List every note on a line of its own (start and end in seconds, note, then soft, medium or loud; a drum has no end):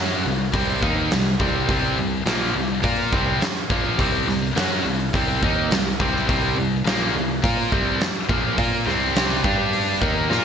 0.00 0.23 F#2 medium
0.00 0.23 F#3 loud
0.00 0.24 C#4 loud
0.00 0.24 F#4 loud
0.24 0.52 C2 medium
0.24 0.47 C3 medium
0.24 0.48 G3 medium
0.52 0.81 C2 medium
0.52 0.81 C3 medium
0.52 0.81 G3 loud
0.52 0.81 C4 loud
0.52 kick loud
0.52 open hi-hat medium
0.81 1.09 D#2 medium
0.81 1.10 D#3 medium
0.81 1.10 A#3 medium
0.81 1.11 D#4 loud
0.81 kick loud
1.11 1.38 C2 medium
1.11 1.34 C3 medium
1.11 1.34 G3 medium
1.11 snare loud
1.11 open hi-hat medium
1.40 1.67 C2 loud
1.40 1.67 C3 medium
1.40 1.68 G3 medium
1.40 1.68 C4 medium
1.40 kick loud
1.68 1.96 C2 medium
1.68 1.96 C3 medium
1.68 1.97 G3 medium
1.68 1.97 C4 loud
1.68 kick loud
1.68 open hi-hat medium
1.98 2.24 C2 medium
1.98 2.21 C3 medium
1.98 2.21 G3 medium
2.26 2.53 A#1 medium
2.26 2.54 A#2 medium
2.26 2.54 F3 loud
2.26 2.54 A#3 medium
2.26 snare loud
2.26 open hi-hat medium
2.55 2.82 C2 medium
2.55 2.78 C3 medium
2.55 2.78 G3 medium
2.83 3.11 A#2 medium
2.83 3.11 A#3 medium
2.83 3.12 F4 loud
2.83 3.12 A#4 loud
2.83 kick loud
2.83 open hi-hat medium
3.12 3.39 C2 medium
3.12 3.40 C3 medium
3.12 3.41 G3 medium
3.12 3.41 C4 medium
3.12 kick loud
3.41 muted distorted electric guitar stroke medium
3.41 muted picked electric bass stroke soft
3.41 snare loud
3.41 open hi-hat medium
3.70 3.97 A#1 loud
3.70 3.98 A#2 medium
3.70 3.98 F3 medium
3.70 3.99 A#3 loud
3.70 kick loud
3.99 4.26 C2 loud
3.99 4.26 C3 medium
3.99 4.27 G3 loud
3.99 4.27 C4 loud
3.99 kick loud
3.99 open hi-hat medium
4.28 4.54 C2 medium
4.28 4.50 C3 medium
4.28 4.51 G3 medium
4.28 snare soft
4.55 4.83 F#2 medium
4.55 4.84 F#3 medium
4.55 4.84 C#4 loud
4.55 4.84 F#4 loud
4.55 snare loud
4.55 open hi-hat medium
4.85 5.12 C2 medium
4.85 5.08 C3 medium
4.85 5.08 G3 medium
5.14 5.41 C2 medium
5.14 5.41 C3 medium
5.14 5.42 G3 medium
5.14 5.42 C4 loud
5.14 kick loud
5.14 open hi-hat medium
5.43 5.69 D#2 medium
5.43 5.70 D#3 medium
5.43 5.71 A#3 medium
5.43 5.71 D#4 loud
5.43 kick loud
5.70 5.97 C2 medium
5.70 5.94 C3 medium
5.70 5.95 G3 medium
5.70 snare loud
5.70 open hi-hat medium
6.00 6.27 C2 medium
6.00 6.27 C3 medium
6.00 6.27 G3 medium
6.00 6.28 C4 loud
6.00 kick loud
6.16 snare soft
6.28 6.55 C2 loud
6.28 6.54 C3 medium
6.28 6.55 G3 loud
6.28 6.56 C4 loud
6.28 kick loud
6.28 open hi-hat medium
6.56 6.84 C2 medium
6.56 6.79 C3 medium
6.56 6.80 G3 medium
6.85 7.12 A#1 medium
6.85 7.13 A#2 medium
6.85 7.13 F3 medium
6.85 7.14 A#3 loud
6.85 snare loud
6.85 open hi-hat medium
7.14 7.41 C2 medium
7.14 7.37 C3 medium
7.14 7.37 G3 medium
7.42 7.70 A#2 medium
7.42 7.71 A#3 loud
7.42 7.71 F4 medium
7.42 7.71 A#4 loud
7.42 kick loud
7.42 open hi-hat medium
7.71 7.99 C2 medium
7.71 7.99 C3 medium
7.71 8.00 G3 loud
7.71 8.00 C4 loud
7.71 kick loud
8.00 muted distorted electric guitar stroke medium
8.00 muted picked electric bass stroke soft
8.00 snare loud
8.00 open hi-hat medium
8.29 8.56 A#1 loud
8.29 8.57 A#2 medium
8.29 8.57 F3 medium
8.29 8.56 A#3 loud
8.29 kick loud
8.57 8.85 A#2 loud
8.57 8.86 A#3 medium
8.57 8.86 F4 medium
8.57 8.86 A#4 loud
8.57 kick loud
8.57 open hi-hat medium
8.85 9.40 C2 medium
8.85 9.43 C3 medium
8.85 9.42 G3 medium
8.85 9.43 C4 loud
8.85 snare soft
9.16 snare loud
9.16 open hi-hat medium
9.43 9.98 G2 medium
9.43 10.00 G3 medium
9.43 10.01 D4 medium
9.43 10.01 G4 medium
9.43 kick loud
9.73 open hi-hat medium
10.00 10.29 D#2 medium
10.00 10.29 D#3 medium
10.00 10.28 A#3 medium
10.00 10.29 D#4 medium
10.00 kick loud
10.29 10.45 A#2 medium
10.29 10.45 A#3 medium
10.29 10.45 F4 loud
10.29 10.45 A#4 loud
10.29 snare medium